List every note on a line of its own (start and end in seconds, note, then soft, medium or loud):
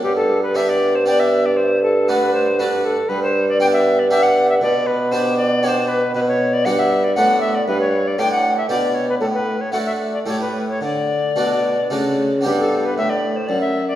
0.03 3.06 G2 soft
0.03 2.93 G2 medium
0.03 0.15 G4 medium
0.16 0.42 A4 medium
0.43 0.58 B4 medium
0.55 0.92 B3 soft
0.55 0.92 D4 soft
0.55 0.92 G4 soft
0.55 0.71 E5 medium
0.69 0.97 D5 medium
0.95 1.07 C5 medium
1.06 1.43 B3 soft
1.06 1.43 D4 soft
1.06 1.44 G4 soft
1.06 1.21 D5 medium
1.20 1.47 E5 medium
1.46 1.58 D5 medium
1.57 1.83 C5 medium
1.83 2.10 A4 medium
2.08 2.45 A3 soft
2.08 2.45 D4 soft
2.08 2.45 F#4 soft
2.08 2.33 B4 medium
2.33 2.61 C5 medium
2.59 2.96 A3 soft
2.59 2.96 D4 soft
2.59 2.97 F#4 soft
2.59 2.87 B4 medium
2.85 3.10 A4 medium
3.09 4.57 G2 soft
3.09 4.64 G2 medium
3.09 3.22 B4 medium
3.23 3.48 C5 medium
3.49 3.60 D5 medium
3.60 3.96 B3 soft
3.60 3.96 D4 soft
3.60 3.97 G4 soft
3.60 3.66 G5 medium
3.73 4.01 E5 medium
3.99 4.10 D5 medium
4.10 4.47 B3 soft
4.10 4.47 D4 soft
4.10 4.47 G4 soft
4.10 4.24 E5 medium
4.23 4.48 F#5 medium
4.50 4.55 E5 medium
4.61 6.10 B2 medium
4.61 6.15 B2 medium
4.61 4.88 D5 medium
4.87 5.13 B4 medium
5.12 5.49 B3 soft
5.12 5.49 D4 soft
5.12 5.49 G4 soft
5.12 5.37 C5 medium
5.37 5.65 D5 medium
5.63 6.00 B3 soft
5.63 6.00 D4 soft
5.63 6.00 G4 soft
5.63 5.69 C#5 medium
5.68 5.90 C5 medium
5.88 6.14 B4 medium
6.15 6.62 B2 medium
6.15 6.68 B2 medium
6.15 6.20 B4 medium
6.28 6.55 C#5 medium
6.53 6.67 D5 medium
6.65 7.13 G2 medium
6.65 7.17 G2 medium
6.65 7.03 B3 soft
6.65 7.03 D4 soft
6.65 7.03 F#4 soft
6.65 6.80 F#5 medium
6.79 7.05 E5 medium
7.04 7.15 D5 medium
7.15 7.63 A2 soft
7.15 7.67 A2 medium
7.15 7.53 B3 soft
7.15 7.53 D4 soft
7.15 7.53 F#4 soft
7.15 7.40 F#5 medium
7.41 7.56 E5 medium
7.55 7.67 D5 medium
7.67 8.14 G2 soft
7.67 8.18 G2 medium
7.67 7.80 B4 medium
7.81 8.09 C#5 medium
8.07 8.21 D5 medium
8.18 8.68 A2 medium
8.18 8.65 A2 soft
8.18 8.55 D4 soft
8.18 8.56 G4 soft
8.18 8.31 G5 medium
8.32 8.56 F#5 medium
8.57 8.68 E5 medium
8.69 9.20 B2 medium
8.69 9.17 B2 soft
8.69 9.07 D4 soft
8.69 9.06 G4 soft
8.69 8.96 D5 medium
8.95 9.08 C#5 medium
9.09 9.15 B4 medium
9.20 9.57 A2 medium
9.20 9.69 A2 soft
9.20 9.26 A4 medium
9.33 9.62 B4 medium
9.61 9.72 C#5 medium
9.72 10.22 A3 soft
9.72 10.25 A3 soft
9.72 10.11 D4 soft
9.72 10.12 F#4 soft
9.72 9.78 F#5 medium
9.86 9.92 E5 medium
10.13 10.19 D5 soft
10.26 10.77 A2 soft
10.26 10.80 A2 soft
10.26 10.77 A3 soft
10.26 10.78 E4 soft
10.26 10.78 G4 soft
10.26 10.40 C#5 medium
10.41 10.68 B4 soft
10.69 10.82 C#5 soft
10.81 11.33 D3 soft
10.81 11.35 D3 soft
10.81 12.18 D5 medium
11.36 11.87 B2 soft
11.36 11.93 B2 soft
11.36 11.76 A3 soft
11.36 11.76 D4 soft
11.36 11.76 F#4 soft
11.90 12.41 C#3 soft
11.90 12.45 C#3 soft
11.90 12.30 A3 soft
11.90 12.30 D4 soft
11.90 12.30 F#4 soft
12.41 12.94 B3 soft
12.41 12.95 D4 soft
12.41 13.95 G4 soft
12.45 12.94 G2 medium
12.45 12.94 G2 soft
12.45 12.51 G4 medium
12.59 12.87 A4 medium
12.85 12.97 B4 medium
12.97 13.49 A2 medium
12.97 13.46 A2 soft
12.97 13.11 E5 medium
13.10 13.38 D5 medium
13.36 13.49 C5 medium
13.47 13.95 F#2 soft
13.47 13.60 D5 medium
13.61 13.87 E5 medium
13.88 13.95 D5 medium